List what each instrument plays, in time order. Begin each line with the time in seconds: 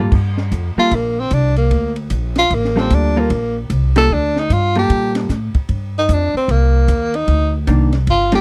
Already playing: upright bass A2
0.00 hollow-body jazz guitar G3 A#3 F4 A4
0.11 upright bass G2, kick, crash
0.38 snare
0.52 upright bass F2, kick, hi-hat pedal, ride
0.76 hollow-body jazz guitar G3 A#3 F4 A4, tenor saxophone F4, muted upright bass stroke
0.91 upright bass A#1, tenor saxophone A#3, kick, ride
1.20 tenor saxophone C4
1.31 upright bass C2, tenor saxophone D4, kick, hi-hat pedal, ride
1.56 tenor saxophone A#3, ride
1.71 upright bass D2, kick, ride
1.96 ride
2.10 upright bass A#1, kick, hi-hat pedal, ride
2.35 tenor saxophone F4, snare, ride
2.50 upright bass A1, kick, ride
2.55 tenor saxophone A#3
2.65 snare
2.76 hollow-body jazz guitar G3 A#3 F4 A4, tenor saxophone C4, snare
2.90 upright bass D2, tenor saxophone D4, kick, hi-hat pedal, ride
3.16 hollow-body jazz guitar G3 A#3 F4 A4, tenor saxophone A#3
3.30 upright bass A#1, kick, ride
3.70 upright bass C2, kick, hi-hat pedal, ride
3.96 hollow-body jazz guitar G3 A#3 F4 A4, tenor saxophone A4, snare, ride
4.10 upright bass D2, tenor saxophone D4, kick
4.36 tenor saxophone D#4, snare
4.50 upright bass G2, tenor saxophone F4, kick, hi-hat pedal, ride
4.75 hollow-body jazz guitar G3 A#3 F4 A4, tenor saxophone G4, ride
4.90 upright bass A#2, kick, ride
5.15 snare, ride
5.29 upright bass A2, kick, snare, hi-hat pedal
5.54 muted upright bass stroke, kick, ride
5.69 upright bass G2, kick, ride
5.98 tenor saxophone D#4
6.09 upright bass F2, kick, hi-hat pedal, ride
6.13 tenor saxophone D4
6.34 tenor saxophone C4, muted upright bass stroke
6.48 upright bass C2, tenor saxophone A#3, kick, ride
6.88 upright bass D#2, kick, hi-hat pedal, ride
7.14 tenor saxophone D#4, ride
7.28 upright bass D2, kick, ride
7.67 upright bass C2, hollow-body jazz guitar D#3 A#3 D4, kick, hi-hat pedal, ride
7.92 snare, ride
8.07 upright bass G1, tenor saxophone F4, kick, ride
8.32 hollow-body jazz guitar G3 A#3 F4 A4, tenor saxophone G4, snare, ride